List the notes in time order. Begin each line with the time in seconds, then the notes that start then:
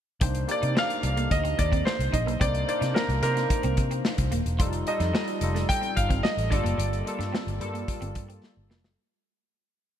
0.20 C2 A#3 C4 D4 D#4 C5, kick, closed hi-hat
0.35 closed hi-hat
0.48 A#3 D4 D#4 G4 D5, muted clean electric guitar stroke, closed hi-hat
0.62 C3 D#4, closed hi-hat
0.75 C4 F5, snare
0.90 closed hi-hat
1.02 C2 A#3 D4 D#4 A4, muted clean electric guitar stroke, closed hi-hat
1.10 A#4
1.17 A#3, closed hi-hat
1.31 D2 D#5, kick, closed hi-hat
1.44 C4, closed hi-hat
1.58 D#2 D5, muted clean electric guitar stroke, kick, closed hi-hat
1.72 C4, kick, closed hi-hat
1.85 C5, muted clean electric guitar stroke, snare
1.99 C2, closed hi-hat
2.12 A#1 D#4 D#5, kick, closed hi-hat
2.26 B1 A#3, closed hi-hat
2.40 C2 A#3 C4 D4 D#4 C5 D5, kick, closed hi-hat
2.55 closed hi-hat
2.68 A#3 D4 D#4 C5 D5, muted clean electric guitar stroke, closed hi-hat
2.81 C3 D#4, snare, closed hi-hat
2.94 C4 A#4, snare
3.09 C2, closed hi-hat
3.22 C3 A#3 D4 D#4 A#4 C5, muted clean electric guitar stroke, snare, closed hi-hat
3.36 A#3, snare, closed hi-hat
3.50 kick, closed hi-hat
3.63 C2 C4, closed hi-hat
3.77 C3, muted clean electric guitar stroke, kick, closed hi-hat
3.91 C4, closed hi-hat
4.05 snare
4.18 C2, kick, closed hi-hat
4.32 D#1 A#3, closed hi-hat
4.45 E1, closed hi-hat
4.59 F1 G3 D#4 F4 A4, kick, closed hi-hat
4.73 closed hi-hat
4.87 G3 D#4 F4 A4 D#5, muted clean electric guitar stroke, closed hi-hat
5.00 F2 D#4, snare, closed hi-hat
5.14 C4, snare
5.28 closed hi-hat
5.41 F1 G3 D#4 F4 A4, muted clean electric guitar stroke, closed hi-hat
5.55 A3, snare, closed hi-hat
5.69 G5, kick, closed hi-hat
5.81 C4, closed hi-hat
5.95 G1 F5, muted clean electric guitar stroke, kick, closed hi-hat
6.09 C4, kick, closed hi-hat
6.23 D#5, muted clean electric guitar stroke, snare
6.37 A1, closed hi-hat
6.50 G1 G3 A3 D4 F4 A4 D5, kick, closed hi-hat
6.59 A#3
6.64 F#1 A#3, closed hi-hat
6.78 G1 G3, closed hi-hat
6.93 closed hi-hat
7.05 G3 A#3 F4 A4, muted clean electric guitar stroke, closed hi-hat
7.19 G2 D4, snare, closed hi-hat
7.33 C4, snare
7.47 G1, closed hi-hat
7.60 G2 G3 A#3 F4 A4, muted clean electric guitar stroke, closed hi-hat
7.74 A#3, closed hi-hat
7.88 kick, closed hi-hat
8.01 G1 C4, closed hi-hat
8.15 G2, muted clean electric guitar stroke, kick, closed hi-hat
8.29 C4, closed hi-hat
8.44 snare
8.57 G1
8.70 F1 A#3, snare
8.84 F#1, snare